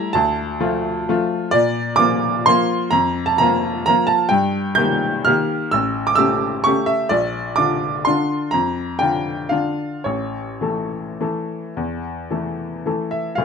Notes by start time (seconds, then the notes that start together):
Already playing: G3 A3 E4 A#5
0.13 D2 A5
0.60 F3 A3 F4
1.09 F3 A3 F4
1.51 A#2 D5
1.96 F3 A#3 F4 D6
2.46 F3 A#3 F4 C6
2.91 F2 A#5
3.26 A5
3.38 F3 A#3 F4 A#5
3.86 F3 A#3 F4 A#5
4.07 A5
4.29 G2 G5
4.75 D#3 A#3 G4 G6
5.25 D#3 A#3 G4 F6
5.71 A1 E6
6.07 D6
6.15 C#3 A3 G4 E6
6.64 C#3 A3 G4 C#6
6.86 E5
7.09 A#1 D5
7.56 D3 D4 F4 D6
8.05 D3 D4 F4 C6
8.51 F2 A#5
8.99 D3 D4 F4 G5
9.49 D3 D4 F4 F5
10.04 A1 C#5
10.61 E3 A3 A4
11.21 E3 A3 A4
11.77 E2
12.31 E3 A3 A4
12.86 E3 A3 A4
13.11 E5
13.35 D1 D2 F5